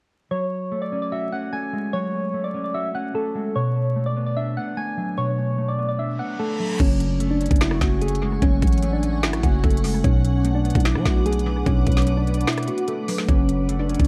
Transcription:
0.31 F#3 C#5
0.72 A3
0.82 D5
0.92 C#4
1.02 D5
1.12 F#4 E5
1.32 C#4 F#5
1.53 A3 G#5
1.73 G#3
1.93 F#3 C#5
2.34 A3
2.44 D5
2.54 C#4
2.64 D5
2.74 F#4 E5
2.95 C#4 F#5
3.15 A3 A4
3.35 G#3
3.56 B2 C#5
3.96 A3
4.06 D5
4.16 B3
4.26 D5
4.37 D4 E5
4.57 B3 F#5
4.77 A3 G#5
4.97 F#3
5.18 B2 C#5
5.58 A3
5.68 D5
5.79 B3
5.89 D5
5.99 D4 E5, reverse cymbal
6.19 B3 F#5
6.39 A3 A4
6.60 F#3
6.80 F#1 F#3 C#4 F#5 G#5 C#6, kick, closed hi-hat, crash
7.00 closed hi-hat
7.20 A3, closed hi-hat
7.31 D4
7.41 C#4, closed hi-hat
7.46 closed hi-hat
7.51 F#1 D4, kick, closed hi-hat
7.56 closed hi-hat
7.61 E4 F#4, finger snap, snare, closed hi-hat
7.71 cross-stick
7.81 F#1 C#4 F#4, finger snap, kick, snare, closed hi-hat
8.01 A3 G#4, closed hi-hat
8.08 closed hi-hat
8.15 closed hi-hat
8.22 G#3
8.42 F#1 F#3 C#4, kick, closed hi-hat
8.62 A1, kick, closed hi-hat
8.67 closed hi-hat
8.73 closed hi-hat
8.78 closed hi-hat
8.83 A3, closed hi-hat
8.93 D4
9.03 C#4, closed hi-hat
9.13 D4
9.23 G#1 E4 F#4, finger snap, snare, closed hi-hat
9.33 A1, cross-stick, closed hi-hat
9.43 F#1 C#4 F#4, kick, closed hi-hat
9.63 F#1 A3, kick, closed hi-hat
9.70 closed hi-hat
9.77 closed hi-hat
9.84 G#3, open hi-hat
10.04 B1 B2 C#4 B4 D6, kick, closed hi-hat
10.25 closed hi-hat
10.45 A3, closed hi-hat
10.55 D4
10.65 B3, closed hi-hat
10.70 closed hi-hat
10.75 B1 D4, kick, closed hi-hat
10.80 closed hi-hat
10.85 D4 E4, finger snap, snare, closed hi-hat
10.95 F#3, cross-stick
11.05 B1 B3 F#4, finger snap, kick, snare, closed hi-hat
11.26 A3 G#4, closed hi-hat
11.33 closed hi-hat
11.39 closed hi-hat
11.46 F#3
11.66 B1 B2 C#4, kick, closed hi-hat
11.87 B1, kick, closed hi-hat
11.92 closed hi-hat
11.97 snare, closed hi-hat
12.02 closed hi-hat
12.07 A3, closed hi-hat
12.17 D4
12.27 B3, closed hi-hat
12.34 D4, closed hi-hat
12.41 closed hi-hat
12.47 D4 E4, finger snap, snare, closed hi-hat
12.53 closed hi-hat
12.58 cross-stick, closed hi-hat
12.63 closed hi-hat
12.68 B3 F#4, closed hi-hat
12.78 closed hi-hat
12.88 A3, closed hi-hat
13.08 F#3, open hi-hat
13.18 snare
13.28 F#1 F#3 C#4 G#4 F#5 C#6, kick, closed hi-hat
13.49 closed hi-hat
13.69 A3, closed hi-hat
13.79 D4
13.89 C#4, closed hi-hat
13.94 closed hi-hat
13.99 F#1 D4, kick, closed hi-hat
14.05 closed hi-hat

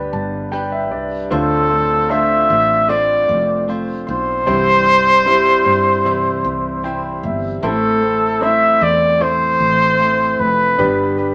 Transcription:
Already playing: G2 D3 G3 B3 D4 G4 B4 D5
0.13 G1 A5
0.52 G3 D4 G4 B4 G5
0.72 E5
0.92 C2 D5
1.30 D2 A2 D3 A3 C4 D4 F4 A4 C5
1.70 C4 F4 C5
2.09 A3 C4 D4 F4 C5 E5
2.49 A1 C4 F4 C5
2.89 D3 A3 C4 F4 C5 D5
3.29 F1
3.68 A3 C4 F4 C5
4.07 B1 C4 F4 C5
4.46 C2 G2 C3 E3 G3 C4 E4 C5
4.86 G3 C4 E4 C5
5.25 G3 C4 E4 C5
5.65 G2 G3 C4 E4 C5
6.05 C3 E3 G3 C4 E4 C5
6.45 C2
6.84 G3 C4 E4 C5 G5
7.23 G1 E5
7.63 A1 A2 E3 A3 C4 E4 A4 C5
8.01 A3 C4 E4 C5
8.40 A3 C4 E4 C5 E5
8.81 E2 D5
9.20 A2 E3 A3 C4 E4 C5
9.60 A1
9.99 A3 C4 E4
10.39 F1 B4
10.78 G1 G3 B3 D4 G4 B4
11.17 D4 G4 B4

